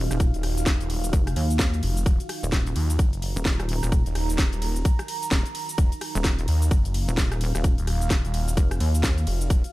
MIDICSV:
0, 0, Header, 1, 5, 480
1, 0, Start_track
1, 0, Key_signature, -6, "minor"
1, 0, Tempo, 465116
1, 206, Time_signature, 4, 2, 24, 8
1, 10035, End_track
2, 0, Start_track
2, 0, Title_t, "Ambient pad"
2, 0, Program_c, 0, 92
2, 0, Note_on_c, 0, 63, 80
2, 0, Note_on_c, 0, 66, 75
2, 0, Note_on_c, 0, 77, 84
2, 2116, Note_off_c, 0, 77, 0
2, 2127, Note_on_c, 0, 82, 88
2, 5957, Note_off_c, 0, 82, 0
2, 5966, Note_on_c, 0, 77, 89
2, 9797, Note_off_c, 0, 77, 0
2, 10035, Note_off_c, 0, 63, 0
2, 10035, Note_off_c, 0, 66, 0
2, 10035, End_track
3, 0, Start_track
3, 0, Title_t, "Detuned saw bass"
3, 0, Program_c, 1, 39
3, 352, Note_on_c, 1, 27, 95
3, 809, Note_off_c, 1, 27, 0
3, 832, Note_on_c, 1, 27, 99
3, 1152, Note_off_c, 1, 27, 0
3, 1887, Note_on_c, 1, 29, 98
3, 2111, Note_off_c, 1, 29, 0
3, 2126, Note_on_c, 1, 27, 98
3, 2248, Note_off_c, 1, 27, 0
3, 2847, Note_on_c, 1, 39, 97
3, 3072, Note_off_c, 1, 39, 0
3, 3087, Note_on_c, 1, 30, 93
3, 3448, Note_off_c, 1, 30, 0
3, 4192, Note_on_c, 1, 27, 101
3, 4648, Note_off_c, 1, 27, 0
3, 4671, Note_on_c, 1, 27, 100
3, 4991, Note_off_c, 1, 27, 0
3, 5966, Note_on_c, 1, 27, 93
3, 6088, Note_off_c, 1, 27, 0
3, 6686, Note_on_c, 1, 39, 96
3, 6911, Note_off_c, 1, 39, 0
3, 6926, Note_on_c, 1, 30, 95
3, 7288, Note_off_c, 1, 30, 0
3, 8031, Note_on_c, 1, 27, 96
3, 8488, Note_off_c, 1, 27, 0
3, 8512, Note_on_c, 1, 27, 97
3, 8831, Note_off_c, 1, 27, 0
3, 9566, Note_on_c, 1, 29, 97
3, 9791, Note_off_c, 1, 29, 0
3, 9806, Note_on_c, 1, 27, 92
3, 9928, Note_off_c, 1, 27, 0
3, 10035, End_track
4, 0, Start_track
4, 0, Title_t, "Wobble bass"
4, 0, Program_c, 2, 39
4, 111, Note_on_c, 2, 27, 99
4, 328, Note_off_c, 2, 27, 0
4, 1166, Note_on_c, 2, 29, 102
4, 1391, Note_off_c, 2, 29, 0
4, 1407, Note_on_c, 2, 39, 95
4, 1871, Note_off_c, 2, 39, 0
4, 2511, Note_on_c, 2, 27, 99
4, 2831, Note_off_c, 2, 27, 0
4, 3472, Note_on_c, 2, 27, 91
4, 3928, Note_off_c, 2, 27, 0
4, 3951, Note_on_c, 2, 27, 98
4, 4168, Note_off_c, 2, 27, 0
4, 5486, Note_on_c, 2, 27, 97
4, 5608, Note_off_c, 2, 27, 0
4, 6350, Note_on_c, 2, 27, 97
4, 6671, Note_off_c, 2, 27, 0
4, 7310, Note_on_c, 2, 27, 98
4, 7768, Note_off_c, 2, 27, 0
4, 7791, Note_on_c, 2, 27, 95
4, 8008, Note_off_c, 2, 27, 0
4, 8846, Note_on_c, 2, 29, 101
4, 9071, Note_off_c, 2, 29, 0
4, 9086, Note_on_c, 2, 39, 98
4, 9551, Note_off_c, 2, 39, 0
4, 10035, End_track
5, 0, Start_track
5, 0, Title_t, "Drums"
5, 111, Note_on_c, 9, 37, 66
5, 111, Note_on_c, 9, 42, 41
5, 114, Note_on_c, 9, 69, 75
5, 207, Note_off_c, 9, 42, 0
5, 207, Note_on_c, 9, 36, 127
5, 207, Note_on_c, 9, 42, 76
5, 207, Note_on_c, 9, 51, 51
5, 209, Note_off_c, 9, 69, 0
5, 209, Note_on_c, 9, 69, 54
5, 214, Note_off_c, 9, 37, 0
5, 310, Note_off_c, 9, 36, 0
5, 310, Note_off_c, 9, 42, 0
5, 310, Note_off_c, 9, 51, 0
5, 312, Note_off_c, 9, 69, 0
5, 352, Note_on_c, 9, 42, 56
5, 354, Note_on_c, 9, 69, 33
5, 447, Note_on_c, 9, 37, 60
5, 447, Note_on_c, 9, 46, 106
5, 447, Note_on_c, 9, 51, 74
5, 455, Note_off_c, 9, 42, 0
5, 458, Note_off_c, 9, 69, 0
5, 550, Note_off_c, 9, 37, 0
5, 550, Note_off_c, 9, 46, 0
5, 550, Note_off_c, 9, 51, 0
5, 592, Note_on_c, 9, 42, 38
5, 594, Note_on_c, 9, 69, 67
5, 682, Note_on_c, 9, 38, 124
5, 686, Note_off_c, 9, 42, 0
5, 686, Note_on_c, 9, 42, 82
5, 686, Note_on_c, 9, 51, 55
5, 687, Note_on_c, 9, 36, 110
5, 689, Note_off_c, 9, 69, 0
5, 689, Note_on_c, 9, 69, 56
5, 785, Note_off_c, 9, 38, 0
5, 790, Note_off_c, 9, 36, 0
5, 790, Note_off_c, 9, 42, 0
5, 790, Note_off_c, 9, 51, 0
5, 792, Note_off_c, 9, 69, 0
5, 832, Note_on_c, 9, 42, 53
5, 834, Note_on_c, 9, 69, 34
5, 926, Note_on_c, 9, 46, 94
5, 926, Note_on_c, 9, 51, 78
5, 935, Note_off_c, 9, 42, 0
5, 937, Note_off_c, 9, 69, 0
5, 1030, Note_off_c, 9, 46, 0
5, 1030, Note_off_c, 9, 51, 0
5, 1071, Note_on_c, 9, 42, 42
5, 1074, Note_on_c, 9, 69, 70
5, 1166, Note_off_c, 9, 42, 0
5, 1166, Note_on_c, 9, 36, 127
5, 1166, Note_on_c, 9, 42, 84
5, 1166, Note_on_c, 9, 51, 56
5, 1169, Note_off_c, 9, 69, 0
5, 1169, Note_on_c, 9, 69, 56
5, 1270, Note_off_c, 9, 36, 0
5, 1270, Note_off_c, 9, 42, 0
5, 1270, Note_off_c, 9, 51, 0
5, 1272, Note_off_c, 9, 69, 0
5, 1311, Note_on_c, 9, 37, 70
5, 1311, Note_on_c, 9, 42, 57
5, 1314, Note_on_c, 9, 69, 35
5, 1406, Note_on_c, 9, 46, 109
5, 1406, Note_on_c, 9, 51, 74
5, 1414, Note_off_c, 9, 37, 0
5, 1414, Note_off_c, 9, 42, 0
5, 1417, Note_off_c, 9, 69, 0
5, 1509, Note_off_c, 9, 46, 0
5, 1509, Note_off_c, 9, 51, 0
5, 1551, Note_on_c, 9, 42, 37
5, 1554, Note_on_c, 9, 69, 67
5, 1641, Note_on_c, 9, 38, 126
5, 1646, Note_off_c, 9, 42, 0
5, 1646, Note_on_c, 9, 36, 109
5, 1646, Note_on_c, 9, 42, 85
5, 1646, Note_on_c, 9, 51, 54
5, 1648, Note_off_c, 9, 69, 0
5, 1648, Note_on_c, 9, 69, 55
5, 1744, Note_off_c, 9, 38, 0
5, 1749, Note_off_c, 9, 42, 0
5, 1749, Note_off_c, 9, 51, 0
5, 1750, Note_off_c, 9, 36, 0
5, 1752, Note_off_c, 9, 69, 0
5, 1791, Note_on_c, 9, 42, 54
5, 1793, Note_on_c, 9, 69, 31
5, 1886, Note_on_c, 9, 46, 100
5, 1886, Note_on_c, 9, 51, 76
5, 1894, Note_off_c, 9, 42, 0
5, 1897, Note_off_c, 9, 69, 0
5, 1989, Note_off_c, 9, 46, 0
5, 1989, Note_off_c, 9, 51, 0
5, 2031, Note_on_c, 9, 42, 39
5, 2034, Note_on_c, 9, 69, 69
5, 2126, Note_off_c, 9, 42, 0
5, 2126, Note_on_c, 9, 36, 127
5, 2126, Note_on_c, 9, 42, 77
5, 2126, Note_on_c, 9, 51, 53
5, 2129, Note_off_c, 9, 69, 0
5, 2129, Note_on_c, 9, 69, 49
5, 2229, Note_off_c, 9, 36, 0
5, 2230, Note_off_c, 9, 42, 0
5, 2230, Note_off_c, 9, 51, 0
5, 2232, Note_off_c, 9, 69, 0
5, 2271, Note_on_c, 9, 42, 52
5, 2274, Note_on_c, 9, 69, 34
5, 2366, Note_on_c, 9, 37, 64
5, 2366, Note_on_c, 9, 46, 112
5, 2366, Note_on_c, 9, 51, 76
5, 2374, Note_off_c, 9, 42, 0
5, 2377, Note_off_c, 9, 69, 0
5, 2469, Note_off_c, 9, 37, 0
5, 2469, Note_off_c, 9, 46, 0
5, 2469, Note_off_c, 9, 51, 0
5, 2513, Note_on_c, 9, 69, 65
5, 2601, Note_on_c, 9, 38, 121
5, 2606, Note_on_c, 9, 36, 104
5, 2606, Note_on_c, 9, 42, 79
5, 2606, Note_on_c, 9, 51, 54
5, 2608, Note_off_c, 9, 69, 0
5, 2608, Note_on_c, 9, 69, 53
5, 2704, Note_off_c, 9, 38, 0
5, 2709, Note_off_c, 9, 42, 0
5, 2709, Note_off_c, 9, 51, 0
5, 2710, Note_off_c, 9, 36, 0
5, 2712, Note_off_c, 9, 69, 0
5, 2751, Note_on_c, 9, 42, 52
5, 2753, Note_on_c, 9, 69, 32
5, 2845, Note_on_c, 9, 46, 100
5, 2845, Note_on_c, 9, 51, 82
5, 2854, Note_off_c, 9, 42, 0
5, 2856, Note_off_c, 9, 69, 0
5, 2949, Note_off_c, 9, 46, 0
5, 2949, Note_off_c, 9, 51, 0
5, 2990, Note_on_c, 9, 42, 38
5, 2993, Note_on_c, 9, 69, 70
5, 3085, Note_off_c, 9, 42, 0
5, 3085, Note_on_c, 9, 42, 78
5, 3085, Note_on_c, 9, 51, 56
5, 3086, Note_on_c, 9, 36, 127
5, 3088, Note_off_c, 9, 69, 0
5, 3088, Note_on_c, 9, 69, 53
5, 3189, Note_off_c, 9, 42, 0
5, 3189, Note_off_c, 9, 51, 0
5, 3190, Note_off_c, 9, 36, 0
5, 3191, Note_off_c, 9, 69, 0
5, 3231, Note_on_c, 9, 42, 56
5, 3233, Note_on_c, 9, 69, 35
5, 3326, Note_on_c, 9, 46, 113
5, 3326, Note_on_c, 9, 51, 77
5, 3334, Note_off_c, 9, 42, 0
5, 3336, Note_off_c, 9, 69, 0
5, 3429, Note_off_c, 9, 46, 0
5, 3429, Note_off_c, 9, 51, 0
5, 3473, Note_on_c, 9, 69, 64
5, 3561, Note_on_c, 9, 38, 127
5, 3566, Note_on_c, 9, 36, 119
5, 3566, Note_on_c, 9, 42, 76
5, 3566, Note_on_c, 9, 51, 55
5, 3568, Note_off_c, 9, 69, 0
5, 3568, Note_on_c, 9, 69, 57
5, 3664, Note_off_c, 9, 38, 0
5, 3669, Note_off_c, 9, 36, 0
5, 3669, Note_off_c, 9, 42, 0
5, 3669, Note_off_c, 9, 51, 0
5, 3671, Note_off_c, 9, 69, 0
5, 3711, Note_on_c, 9, 37, 85
5, 3711, Note_on_c, 9, 42, 52
5, 3713, Note_on_c, 9, 69, 32
5, 3805, Note_on_c, 9, 46, 103
5, 3805, Note_on_c, 9, 51, 77
5, 3814, Note_off_c, 9, 37, 0
5, 3814, Note_off_c, 9, 42, 0
5, 3817, Note_off_c, 9, 69, 0
5, 3908, Note_off_c, 9, 46, 0
5, 3908, Note_off_c, 9, 51, 0
5, 3951, Note_on_c, 9, 37, 69
5, 3951, Note_on_c, 9, 42, 36
5, 3953, Note_on_c, 9, 69, 66
5, 4046, Note_off_c, 9, 42, 0
5, 4046, Note_on_c, 9, 36, 127
5, 4046, Note_on_c, 9, 42, 74
5, 4046, Note_on_c, 9, 51, 55
5, 4048, Note_off_c, 9, 69, 0
5, 4048, Note_on_c, 9, 69, 54
5, 4054, Note_off_c, 9, 37, 0
5, 4149, Note_off_c, 9, 36, 0
5, 4149, Note_off_c, 9, 42, 0
5, 4149, Note_off_c, 9, 51, 0
5, 4152, Note_off_c, 9, 69, 0
5, 4191, Note_on_c, 9, 42, 51
5, 4193, Note_on_c, 9, 69, 33
5, 4286, Note_on_c, 9, 37, 64
5, 4286, Note_on_c, 9, 46, 106
5, 4286, Note_on_c, 9, 51, 75
5, 4294, Note_off_c, 9, 42, 0
5, 4297, Note_off_c, 9, 69, 0
5, 4389, Note_off_c, 9, 37, 0
5, 4389, Note_off_c, 9, 46, 0
5, 4389, Note_off_c, 9, 51, 0
5, 4431, Note_on_c, 9, 42, 34
5, 4433, Note_on_c, 9, 69, 64
5, 4521, Note_on_c, 9, 38, 126
5, 4526, Note_off_c, 9, 42, 0
5, 4526, Note_on_c, 9, 36, 108
5, 4526, Note_on_c, 9, 42, 80
5, 4526, Note_on_c, 9, 51, 58
5, 4529, Note_off_c, 9, 69, 0
5, 4529, Note_on_c, 9, 69, 52
5, 4625, Note_off_c, 9, 38, 0
5, 4629, Note_off_c, 9, 36, 0
5, 4629, Note_off_c, 9, 42, 0
5, 4629, Note_off_c, 9, 51, 0
5, 4632, Note_off_c, 9, 69, 0
5, 4671, Note_on_c, 9, 42, 51
5, 4674, Note_on_c, 9, 69, 34
5, 4766, Note_on_c, 9, 46, 103
5, 4766, Note_on_c, 9, 51, 83
5, 4774, Note_off_c, 9, 42, 0
5, 4777, Note_off_c, 9, 69, 0
5, 4869, Note_off_c, 9, 46, 0
5, 4869, Note_off_c, 9, 51, 0
5, 4911, Note_on_c, 9, 42, 38
5, 4913, Note_on_c, 9, 69, 67
5, 5006, Note_off_c, 9, 42, 0
5, 5006, Note_on_c, 9, 36, 127
5, 5006, Note_on_c, 9, 42, 75
5, 5006, Note_on_c, 9, 51, 61
5, 5008, Note_off_c, 9, 69, 0
5, 5008, Note_on_c, 9, 69, 54
5, 5109, Note_off_c, 9, 36, 0
5, 5109, Note_off_c, 9, 42, 0
5, 5109, Note_off_c, 9, 51, 0
5, 5111, Note_off_c, 9, 69, 0
5, 5151, Note_on_c, 9, 37, 77
5, 5151, Note_on_c, 9, 42, 53
5, 5153, Note_on_c, 9, 69, 34
5, 5246, Note_on_c, 9, 46, 111
5, 5246, Note_on_c, 9, 51, 83
5, 5254, Note_off_c, 9, 37, 0
5, 5254, Note_off_c, 9, 42, 0
5, 5257, Note_off_c, 9, 69, 0
5, 5349, Note_off_c, 9, 46, 0
5, 5349, Note_off_c, 9, 51, 0
5, 5391, Note_on_c, 9, 42, 36
5, 5393, Note_on_c, 9, 69, 66
5, 5481, Note_on_c, 9, 38, 120
5, 5486, Note_off_c, 9, 42, 0
5, 5486, Note_on_c, 9, 36, 111
5, 5486, Note_on_c, 9, 42, 78
5, 5486, Note_on_c, 9, 51, 61
5, 5488, Note_off_c, 9, 69, 0
5, 5488, Note_on_c, 9, 69, 55
5, 5584, Note_off_c, 9, 38, 0
5, 5589, Note_off_c, 9, 36, 0
5, 5589, Note_off_c, 9, 42, 0
5, 5589, Note_off_c, 9, 51, 0
5, 5592, Note_off_c, 9, 69, 0
5, 5631, Note_on_c, 9, 42, 50
5, 5633, Note_on_c, 9, 69, 33
5, 5725, Note_on_c, 9, 46, 99
5, 5725, Note_on_c, 9, 51, 83
5, 5734, Note_off_c, 9, 42, 0
5, 5736, Note_off_c, 9, 69, 0
5, 5829, Note_off_c, 9, 46, 0
5, 5829, Note_off_c, 9, 51, 0
5, 5871, Note_on_c, 9, 42, 37
5, 5873, Note_on_c, 9, 69, 71
5, 5965, Note_off_c, 9, 42, 0
5, 5965, Note_on_c, 9, 42, 72
5, 5965, Note_on_c, 9, 51, 59
5, 5966, Note_on_c, 9, 36, 124
5, 5968, Note_off_c, 9, 69, 0
5, 5968, Note_on_c, 9, 69, 58
5, 6068, Note_off_c, 9, 42, 0
5, 6068, Note_off_c, 9, 51, 0
5, 6069, Note_off_c, 9, 36, 0
5, 6071, Note_off_c, 9, 69, 0
5, 6110, Note_on_c, 9, 42, 53
5, 6113, Note_on_c, 9, 69, 35
5, 6205, Note_on_c, 9, 37, 65
5, 6205, Note_on_c, 9, 46, 103
5, 6205, Note_on_c, 9, 51, 83
5, 6214, Note_off_c, 9, 42, 0
5, 6216, Note_off_c, 9, 69, 0
5, 6309, Note_off_c, 9, 37, 0
5, 6309, Note_off_c, 9, 46, 0
5, 6309, Note_off_c, 9, 51, 0
5, 6350, Note_on_c, 9, 42, 34
5, 6353, Note_on_c, 9, 69, 64
5, 6441, Note_on_c, 9, 38, 119
5, 6445, Note_off_c, 9, 42, 0
5, 6445, Note_on_c, 9, 42, 77
5, 6445, Note_on_c, 9, 51, 61
5, 6446, Note_on_c, 9, 36, 100
5, 6448, Note_off_c, 9, 69, 0
5, 6448, Note_on_c, 9, 69, 58
5, 6544, Note_off_c, 9, 38, 0
5, 6548, Note_off_c, 9, 42, 0
5, 6548, Note_off_c, 9, 51, 0
5, 6549, Note_off_c, 9, 36, 0
5, 6551, Note_off_c, 9, 69, 0
5, 6590, Note_on_c, 9, 42, 51
5, 6593, Note_on_c, 9, 69, 34
5, 6685, Note_on_c, 9, 46, 96
5, 6685, Note_on_c, 9, 51, 83
5, 6693, Note_off_c, 9, 42, 0
5, 6696, Note_off_c, 9, 69, 0
5, 6789, Note_off_c, 9, 46, 0
5, 6789, Note_off_c, 9, 51, 0
5, 6831, Note_on_c, 9, 42, 36
5, 6833, Note_on_c, 9, 69, 73
5, 6926, Note_off_c, 9, 42, 0
5, 6926, Note_on_c, 9, 36, 125
5, 6926, Note_on_c, 9, 42, 76
5, 6926, Note_on_c, 9, 51, 59
5, 6928, Note_off_c, 9, 69, 0
5, 6928, Note_on_c, 9, 69, 57
5, 7029, Note_off_c, 9, 36, 0
5, 7029, Note_off_c, 9, 42, 0
5, 7029, Note_off_c, 9, 51, 0
5, 7031, Note_off_c, 9, 69, 0
5, 7071, Note_on_c, 9, 42, 56
5, 7073, Note_on_c, 9, 69, 36
5, 7166, Note_on_c, 9, 46, 108
5, 7166, Note_on_c, 9, 51, 87
5, 7174, Note_off_c, 9, 42, 0
5, 7176, Note_off_c, 9, 69, 0
5, 7269, Note_off_c, 9, 46, 0
5, 7269, Note_off_c, 9, 51, 0
5, 7313, Note_on_c, 9, 69, 68
5, 7401, Note_on_c, 9, 38, 117
5, 7405, Note_on_c, 9, 42, 79
5, 7405, Note_on_c, 9, 51, 57
5, 7406, Note_on_c, 9, 36, 109
5, 7408, Note_off_c, 9, 69, 0
5, 7408, Note_on_c, 9, 69, 60
5, 7504, Note_off_c, 9, 38, 0
5, 7509, Note_off_c, 9, 36, 0
5, 7509, Note_off_c, 9, 42, 0
5, 7509, Note_off_c, 9, 51, 0
5, 7511, Note_off_c, 9, 69, 0
5, 7550, Note_on_c, 9, 37, 80
5, 7550, Note_on_c, 9, 42, 50
5, 7553, Note_on_c, 9, 69, 32
5, 7645, Note_on_c, 9, 46, 94
5, 7645, Note_on_c, 9, 51, 88
5, 7654, Note_off_c, 9, 37, 0
5, 7654, Note_off_c, 9, 42, 0
5, 7656, Note_off_c, 9, 69, 0
5, 7748, Note_off_c, 9, 46, 0
5, 7748, Note_off_c, 9, 51, 0
5, 7790, Note_on_c, 9, 37, 73
5, 7790, Note_on_c, 9, 42, 36
5, 7793, Note_on_c, 9, 69, 72
5, 7885, Note_off_c, 9, 42, 0
5, 7885, Note_on_c, 9, 42, 74
5, 7885, Note_on_c, 9, 51, 56
5, 7886, Note_on_c, 9, 36, 118
5, 7888, Note_off_c, 9, 69, 0
5, 7888, Note_on_c, 9, 69, 56
5, 7894, Note_off_c, 9, 37, 0
5, 7989, Note_off_c, 9, 36, 0
5, 7989, Note_off_c, 9, 42, 0
5, 7989, Note_off_c, 9, 51, 0
5, 7991, Note_off_c, 9, 69, 0
5, 8031, Note_on_c, 9, 42, 55
5, 8033, Note_on_c, 9, 69, 35
5, 8125, Note_on_c, 9, 37, 60
5, 8125, Note_on_c, 9, 46, 108
5, 8125, Note_on_c, 9, 51, 84
5, 8134, Note_off_c, 9, 42, 0
5, 8136, Note_off_c, 9, 69, 0
5, 8229, Note_off_c, 9, 37, 0
5, 8229, Note_off_c, 9, 46, 0
5, 8229, Note_off_c, 9, 51, 0
5, 8270, Note_on_c, 9, 42, 36
5, 8273, Note_on_c, 9, 69, 68
5, 8361, Note_on_c, 9, 38, 110
5, 8365, Note_off_c, 9, 42, 0
5, 8365, Note_on_c, 9, 42, 80
5, 8365, Note_on_c, 9, 51, 59
5, 8366, Note_on_c, 9, 36, 102
5, 8368, Note_off_c, 9, 69, 0
5, 8368, Note_on_c, 9, 69, 60
5, 8464, Note_off_c, 9, 38, 0
5, 8468, Note_off_c, 9, 42, 0
5, 8468, Note_off_c, 9, 51, 0
5, 8469, Note_off_c, 9, 36, 0
5, 8471, Note_off_c, 9, 69, 0
5, 8511, Note_on_c, 9, 42, 54
5, 8513, Note_on_c, 9, 69, 35
5, 8605, Note_on_c, 9, 46, 91
5, 8605, Note_on_c, 9, 51, 87
5, 8614, Note_off_c, 9, 42, 0
5, 8616, Note_off_c, 9, 69, 0
5, 8709, Note_off_c, 9, 46, 0
5, 8709, Note_off_c, 9, 51, 0
5, 8751, Note_on_c, 9, 42, 39
5, 8753, Note_on_c, 9, 69, 75
5, 8845, Note_off_c, 9, 42, 0
5, 8845, Note_on_c, 9, 42, 82
5, 8845, Note_on_c, 9, 51, 60
5, 8846, Note_on_c, 9, 36, 120
5, 8848, Note_off_c, 9, 69, 0
5, 8848, Note_on_c, 9, 69, 60
5, 8949, Note_off_c, 9, 36, 0
5, 8949, Note_off_c, 9, 42, 0
5, 8949, Note_off_c, 9, 51, 0
5, 8951, Note_off_c, 9, 69, 0
5, 8991, Note_on_c, 9, 37, 74
5, 8991, Note_on_c, 9, 42, 59
5, 8993, Note_on_c, 9, 69, 38
5, 9086, Note_on_c, 9, 46, 104
5, 9086, Note_on_c, 9, 51, 87
5, 9094, Note_off_c, 9, 37, 0
5, 9094, Note_off_c, 9, 42, 0
5, 9096, Note_off_c, 9, 69, 0
5, 9189, Note_off_c, 9, 46, 0
5, 9189, Note_off_c, 9, 51, 0
5, 9231, Note_on_c, 9, 42, 36
5, 9234, Note_on_c, 9, 69, 69
5, 9321, Note_on_c, 9, 38, 118
5, 9325, Note_off_c, 9, 42, 0
5, 9325, Note_on_c, 9, 42, 81
5, 9325, Note_on_c, 9, 51, 60
5, 9326, Note_on_c, 9, 36, 109
5, 9328, Note_off_c, 9, 69, 0
5, 9328, Note_on_c, 9, 69, 64
5, 9424, Note_off_c, 9, 38, 0
5, 9429, Note_off_c, 9, 36, 0
5, 9429, Note_off_c, 9, 42, 0
5, 9429, Note_off_c, 9, 51, 0
5, 9431, Note_off_c, 9, 69, 0
5, 9471, Note_on_c, 9, 42, 53
5, 9473, Note_on_c, 9, 69, 35
5, 9566, Note_on_c, 9, 46, 90
5, 9566, Note_on_c, 9, 51, 87
5, 9574, Note_off_c, 9, 42, 0
5, 9576, Note_off_c, 9, 69, 0
5, 9669, Note_off_c, 9, 46, 0
5, 9669, Note_off_c, 9, 51, 0
5, 9711, Note_on_c, 9, 42, 39
5, 9713, Note_on_c, 9, 69, 72
5, 9806, Note_off_c, 9, 42, 0
5, 9806, Note_on_c, 9, 36, 122
5, 9806, Note_on_c, 9, 42, 83
5, 9806, Note_on_c, 9, 51, 54
5, 9809, Note_off_c, 9, 69, 0
5, 9809, Note_on_c, 9, 69, 59
5, 9909, Note_off_c, 9, 36, 0
5, 9909, Note_off_c, 9, 42, 0
5, 9909, Note_off_c, 9, 51, 0
5, 9912, Note_off_c, 9, 69, 0
5, 9951, Note_on_c, 9, 42, 55
5, 9954, Note_on_c, 9, 69, 39
5, 10035, Note_off_c, 9, 42, 0
5, 10035, Note_off_c, 9, 69, 0
5, 10035, End_track
0, 0, End_of_file